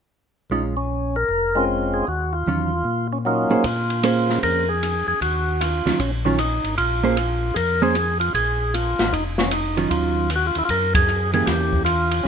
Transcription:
0.50 A#1 G#3 C#4 D#4 F4
0.77 C#4
1.16 A#4
1.29 F1
1.55 G#3 C4 C#4 F4
1.94 G#4
2.07 D#2 F#4
2.33 F4
2.46 E2 D#3 F#3 C#4 F4
2.85 A#2
3.13 C#4
3.25 F#3 A#3 C#4 D#4 F4
3.50 A#2 A#3 C#4 G#4 C5
3.64 A#2 F4, kick, ride
3.90 ride
4.03 A#3 C#4 G#4 C5, hi-hat pedal, ride
4.30 snare
4.43 F2 A#4, kick, ride
4.69 G#4
4.83 hi-hat pedal, ride
5.07 F2 G#4
5.21 D#2 F#4, kick, ride
5.61 F4, hi-hat pedal, ride
5.85 D#2 D#3 F#3 C#4 F4, snare, ride
5.99 A#1 C#4, kick, ride
6.25 D#3 F#3 C#4 F4
6.38 D#4, hi-hat pedal, ride
6.64 G#1, ride
6.77 A#1 F4, kick, ride
7.04 A#3 C#4 G#4 C5
7.17 hi-hat pedal, ride
7.54 F2 G#4 A#4, kick, ride
7.82 A#3 C#4 G#4 C5
7.95 hi-hat pedal, ride
8.20 F4, ride
8.34 A#1 G#4, kick, ride
8.74 F4, hi-hat pedal, ride
8.99 A1, snare, ride
9.13 F1 D#4, kick, ride
9.38 C#4, snare
9.51 D#4, hi-hat pedal, ride
9.77 D#3 F#3 C#4 F4, ride
9.90 D#2 F4, kick, ride
10.30 hi-hat pedal, ride
10.36 F#4
10.47 F4
10.55 D#2 E4, ride
10.65 F#2 F4, kick, ride
10.70 A#4
10.95 G#4, kick, ride
11.08 hi-hat pedal
11.33 E3 A#3 C#4 G4 G#4, ride
11.46 E2 G4, kick, snare, ride
11.73 kick
11.85 F4, hi-hat pedal, ride
12.11 ride
12.23 C#4

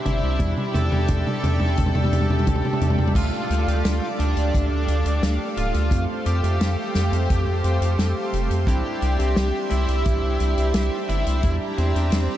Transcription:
Already playing: C4 D4 G4 D5 E5 C6
0.06 G1 E4, closed hi-hat, mid tom
0.23 C2
0.39 E2 G3 D4 E4 G5, kick, closed hi-hat, mid tom
0.57 mid tom
0.74 E2 A4, closed hi-hat, mid tom
0.92 E2 G3 D4 G4, mid tom
1.08 E2, kick, closed hi-hat, mid tom
1.27 mid tom
1.44 E2, closed hi-hat, mid tom
1.60 E2, mid tom
1.77 E2, kick, closed hi-hat, mid tom
1.86 mid tom
1.95 E2, mid tom
2.04 mid tom
2.12 E2, closed hi-hat, mid tom
2.21 mid tom
2.29 E2, mid tom
2.39 mid tom
2.47 D2, kick, closed hi-hat, mid tom
2.55 mid tom
2.65 mid tom
2.73 mid tom
2.81 E2, closed hi-hat, mid tom
2.90 mid tom
2.98 E2, mid tom
3.07 mid tom
3.15 D2 A3 D4 F4 A4 D5 F5 D6, kick, closed hi-hat, crash
3.50 D2, closed hi-hat
3.67 D2 A3 D4 G4, closed hi-hat
3.85 D2, snare, closed hi-hat
4.19 D2 D4 D5, closed hi-hat
4.37 D2, closed hi-hat
4.55 D2, kick, closed hi-hat
4.71 D2
4.88 D2, closed hi-hat
5.06 D2, closed hi-hat
5.23 D2, snare, closed hi-hat
5.57 D1 F4 F5, closed hi-hat
5.74 D2, closed hi-hat
5.91 F2 A3 C4 F4 C5 C6, kick, closed hi-hat
6.26 F2 G4 G5, closed hi-hat
6.43 F2 A3 C4 G4, closed hi-hat
6.61 F2, snare, closed hi-hat
6.95 F2, snare, closed hi-hat
7.12 F2, closed hi-hat
7.30 F2, kick, closed hi-hat
7.64 F2, closed hi-hat
7.81 F2, closed hi-hat
7.98 F2, snare, closed hi-hat
8.33 F1, closed hi-hat
8.50 F2, closed hi-hat
8.67 C2 C4 D4 E4 G4 D5 E5 G5, kick, closed hi-hat
9.02 C2, closed hi-hat
9.19 C2 C4 D4 G4, closed hi-hat
9.36 C2, snare, closed hi-hat
9.70 C2 E4 E5, closed hi-hat
9.88 C2, closed hi-hat
10.05 C2, kick, closed hi-hat
10.22 C2
10.40 C2, closed hi-hat
10.57 C2, closed hi-hat
10.74 C2, snare, closed hi-hat
11.09 G1 E4 E5, closed hi-hat
11.26 C2, closed hi-hat
11.43 E2 G3 D4 E4 E5 A#5, kick, closed hi-hat
11.78 E2 C4 C5, closed hi-hat
11.95 E2 G3 D4 G4, closed hi-hat
12.12 E2, snare, closed hi-hat

